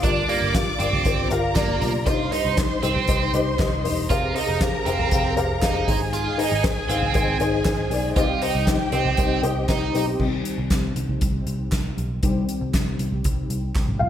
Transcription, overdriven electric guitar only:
0, 0, Header, 1, 2, 480
1, 0, Start_track
1, 0, Key_signature, -3, "minor"
1, 0, Tempo, 508044
1, 34, Time_signature, 4, 2, 24, 8
1, 13317, End_track
2, 0, Start_track
2, 0, Title_t, "Overdriven electric guitar"
2, 0, Program_c, 0, 29
2, 33, Note_on_c, 0, 62, 90
2, 261, Note_off_c, 0, 62, 0
2, 277, Note_on_c, 0, 58, 65
2, 503, Note_off_c, 0, 58, 0
2, 751, Note_on_c, 0, 60, 69
2, 1203, Note_off_c, 0, 60, 0
2, 1470, Note_on_c, 0, 58, 84
2, 1810, Note_off_c, 0, 58, 0
2, 1951, Note_on_c, 0, 65, 94
2, 2180, Note_off_c, 0, 65, 0
2, 2186, Note_on_c, 0, 63, 74
2, 2418, Note_off_c, 0, 63, 0
2, 2671, Note_on_c, 0, 60, 74
2, 3123, Note_off_c, 0, 60, 0
2, 3871, Note_on_c, 0, 65, 97
2, 4100, Note_off_c, 0, 65, 0
2, 4110, Note_on_c, 0, 63, 69
2, 4339, Note_off_c, 0, 63, 0
2, 4593, Note_on_c, 0, 60, 84
2, 5044, Note_off_c, 0, 60, 0
2, 5319, Note_on_c, 0, 63, 74
2, 5654, Note_off_c, 0, 63, 0
2, 5793, Note_on_c, 0, 65, 91
2, 6021, Note_off_c, 0, 65, 0
2, 6035, Note_on_c, 0, 63, 67
2, 6262, Note_off_c, 0, 63, 0
2, 6513, Note_on_c, 0, 60, 69
2, 6964, Note_off_c, 0, 60, 0
2, 7714, Note_on_c, 0, 65, 90
2, 7941, Note_off_c, 0, 65, 0
2, 7954, Note_on_c, 0, 63, 70
2, 8181, Note_off_c, 0, 63, 0
2, 8432, Note_on_c, 0, 60, 75
2, 8884, Note_off_c, 0, 60, 0
2, 9151, Note_on_c, 0, 63, 71
2, 9491, Note_off_c, 0, 63, 0
2, 13317, End_track
0, 0, End_of_file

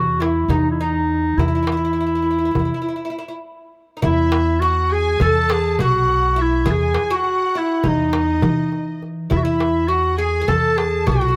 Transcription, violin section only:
0, 0, Header, 1, 2, 480
1, 0, Start_track
1, 0, Tempo, 587084
1, 1131, Time_signature, 9, 3, 24, 8
1, 9288, End_track
2, 0, Start_track
2, 0, Title_t, "Violin section"
2, 0, Program_c, 0, 48
2, 3306, Note_on_c, 0, 76, 74
2, 3747, Note_off_c, 0, 76, 0
2, 3785, Note_on_c, 0, 78, 77
2, 4012, Note_on_c, 0, 80, 92
2, 4020, Note_off_c, 0, 78, 0
2, 4248, Note_off_c, 0, 80, 0
2, 4248, Note_on_c, 0, 80, 91
2, 4347, Note_off_c, 0, 80, 0
2, 4347, Note_on_c, 0, 81, 91
2, 4731, Note_off_c, 0, 81, 0
2, 4748, Note_on_c, 0, 78, 81
2, 5188, Note_off_c, 0, 78, 0
2, 5210, Note_on_c, 0, 76, 72
2, 5452, Note_off_c, 0, 76, 0
2, 5454, Note_on_c, 0, 80, 76
2, 5814, Note_off_c, 0, 80, 0
2, 5827, Note_on_c, 0, 78, 83
2, 6420, Note_off_c, 0, 78, 0
2, 6431, Note_on_c, 0, 75, 66
2, 7349, Note_off_c, 0, 75, 0
2, 7614, Note_on_c, 0, 76, 73
2, 7720, Note_off_c, 0, 76, 0
2, 7730, Note_on_c, 0, 76, 67
2, 8068, Note_off_c, 0, 76, 0
2, 8088, Note_on_c, 0, 78, 71
2, 8330, Note_off_c, 0, 78, 0
2, 8330, Note_on_c, 0, 80, 81
2, 8571, Note_off_c, 0, 80, 0
2, 8572, Note_on_c, 0, 81, 78
2, 9051, Note_off_c, 0, 81, 0
2, 9051, Note_on_c, 0, 78, 81
2, 9288, Note_off_c, 0, 78, 0
2, 9288, End_track
0, 0, End_of_file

